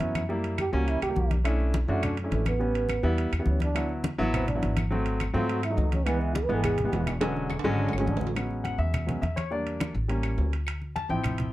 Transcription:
Already playing: F#3 B3 C#4 E4
0.00 F#2, high conga, high timbale
0.15 high conga, high timbale, claves
0.29 G3 A#3 E4, high conga
0.44 high conga, high timbale
0.58 G4, high conga, high timbale, claves
0.73 C#2 G3 A#3 C#4 F#4, high conga
0.87 E4, high conga, high timbale
1.02 C#2 G4, high conga, high timbale, claves
1.09 G3 A#3 G4
1.16 B1, high conga
1.31 high conga, high timbale
1.44 A3 C#4 D4 E4, high conga, high timbale, claves
1.60 high conga
1.74 high conga, high timbale
1.88 F#2 A3 C#4 D4 E4 F#4, high conga
2.03 D4, high conga, low conga, high timbale, claves
2.17 F#3, high conga, high timbale
2.24 A3 C#4 D4 E4
2.31 A1 A3, high conga, high timbale, low timbale
2.46 B3, high conga, high timbale, claves
2.59 G3 B3 C#4, high conga
2.74 high conga, high timbale
2.89 high conga, high timbale, claves
3.03 E2 G3 B3 E4, high conga
3.18 high conga, high timbale
3.32 E2, high conga, high timbale, claves
3.39 G3 B3 E4
3.46 D2 C#4, high conga
3.60 D4, high conga, high timbale
3.75 F#3 B3 E4, high conga, high timbale, claves
3.89 high conga
4.04 high conga, high timbale
4.18 A1 F#3 B3 E4, high conga
4.34 C4, high conga, low conga, high timbale, claves
4.47 D4, high conga, low conga, high timbale
4.55 F#3 B3 E4
4.62 G#1, high conga, high timbale
4.77 high conga, high timbale, claves
4.91 F#3 A3 C4, high conga
5.06 high conga, high timbale
5.20 high conga, high timbale, claves
5.33 G#2 F#3 A3 C4 F4, high conga
5.49 F#4, high conga, high timbale
5.63 E4, high conga, high timbale, claves
5.70 F#3 A3 D#4
5.77 C#2 D#4, high conga, low timbale
5.92 C#4, high conga, high timbale
6.06 E3 G#3 B3, high conga, high timbale, claves
6.20 E4, high conga
6.35 G#4, high conga, high timbale
6.44 B4
6.49 G#1 E3 G#3 B3, high conga
6.54 A4
6.64 G#4, high conga, low conga, high timbale, claves
6.78 high conga, low conga, high timbale
6.84 E3 G#3 B3
6.92 E1, high conga, high timbale, low timbale
7.07 high conga, high timbale, claves
7.21 D3 F#3 G#3 C#4, high timbale
7.37 high conga
7.50 high conga, high timbale, claves
7.59 high timbale
7.64 G#1 D3 F#3 G#3 C#4, high conga
7.79 D4, high conga
7.89 G#1, low timbale
7.93 C#4, high conga, claves
7.98 D3 F#3 G#3 C#4, low timbale
8.07 A1 D4, high conga
8.17 low timbale
8.21 high conga
8.27 low timbale
8.35 F#3 G#3 B3 C#4, high conga, high timbale, claves
8.51 high conga
8.64 F#5, high conga, high timbale
8.78 E2 E5, high conga
8.94 high conga, low conga, high timbale, claves
9.07 F#3 G#3 B3 C#4, high conga, low conga, high timbale
9.22 E2 E5, high conga, high timbale
9.36 C#5, high conga, high timbale, claves
9.51 G3 A#3 D4 D5, high conga
9.67 high conga, high timbale
9.80 high conga, high timbale, claves
9.95 A1, high conga
10.08 G3 A#3 C#4, high conga, high timbale
10.23 high conga, high timbale, claves
10.38 D2, high conga, low timbale
10.53 high timbale
10.67 high conga, high timbale, claves
10.82 high conga
10.96 A5, high conga, high timbale
11.09 A1 F3 C4 E4 G5, high conga
11.24 high conga, low conga, high timbale, claves
11.38 high conga, low conga, high timbale

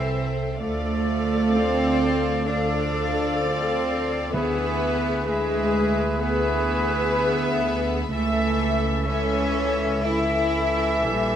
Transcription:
Already playing: C2 E3 C4 A4 C5 E5
0.60 D2 F3 A3 A4 D5 F5
1.53 C4 C5
2.46 F3 D4 A4 D5 F5
3.40 C4 C5
4.32 D2 D3 E3 B3 G#4 B4 E5
5.26 E3 G#3 G#4 B4 E5
6.21 E3 B3 G#4 B4 E5
8.12 C#2 E3 A3 A4 E5
9.07 E3 C#4 A4 C#5 E5
10.03 E3 E4 A4 E5
11.04 A#1 G3 G4

